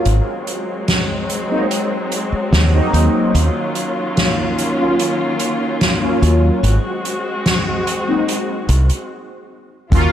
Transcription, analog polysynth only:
1.49 1.65 F#3 medium
1.49 1.65 A#3 medium
1.49 1.66 C4 medium
1.49 1.66 D#4 loud
2.73 3.32 F#3 medium
2.73 3.32 A#3 medium
2.73 3.33 C4 medium
2.73 3.33 D#4 loud
4.78 4.94 F#3 medium
4.78 4.94 A#3 medium
4.78 4.94 C#4 medium
4.78 4.95 F4 loud
6.01 6.61 F#3 medium
6.01 6.61 A#3 medium
6.01 6.61 C#4 medium
6.01 6.61 F4 loud
8.07 8.23 F#3 medium
8.07 8.23 A#3 medium
8.07 8.23 C4 medium
8.07 8.24 D#4 loud
9.91 10.12 F#3 loud
9.91 10.12 A#3 loud
9.91 10.12 C#4 medium
9.91 10.12 F4 loud

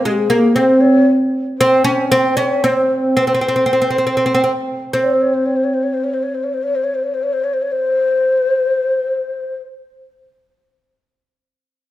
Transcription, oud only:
0.05 0.29 G#3 medium
0.30 0.55 A#3 medium
0.56 1.03 C4 medium
1.61 1.84 C4 loud
1.84 2.10 C#4 loud
2.12 2.36 C4 loud
2.37 2.63 C#4 medium
2.64 3.15 C4 medium
3.17 3.24 C4 medium
3.27 3.33 C4 medium
3.34 3.40 C4 medium
3.41 3.47 C4 medium
3.48 3.55 C4 medium
3.56 3.64 C4 soft
3.66 3.72 C4 medium
3.73 3.80 C4 medium
3.82 3.89 C4 medium
3.90 3.97 C4 soft
3.98 4.05 C4 soft
4.07 4.14 C4 soft
4.17 4.24 C4 medium
4.26 4.33 C4 medium
4.34 4.42 C4 medium
4.44 4.51 C4 medium
4.93 9.08 C4 medium

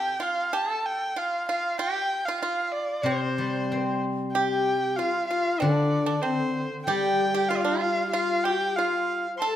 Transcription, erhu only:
0.00 0.24 G5 medium
0.22 0.54 F5 medium
0.53 0.88 A5 medium
0.86 1.20 G5 medium
1.18 1.48 F5 medium
1.48 1.78 F5 medium
1.80 2.27 G5 medium
2.26 2.40 F5 medium
2.41 2.73 F5 medium
2.72 3.03 D5 medium
3.02 4.01 C5 medium
4.33 4.98 G5 medium
4.96 5.27 F5 medium
5.28 5.61 F5 medium
5.60 6.23 D5 medium
6.22 6.71 C5 medium
6.85 7.50 G5 medium
7.49 7.58 F5 medium
7.56 7.62 D5 medium
7.56 7.79 F5 medium
7.80 8.11 F5 medium
8.12 8.46 F5 medium
8.44 8.77 G5 medium
8.76 9.26 F5 medium
9.38 9.56 A5 loud
9.38 9.42 C6 medium

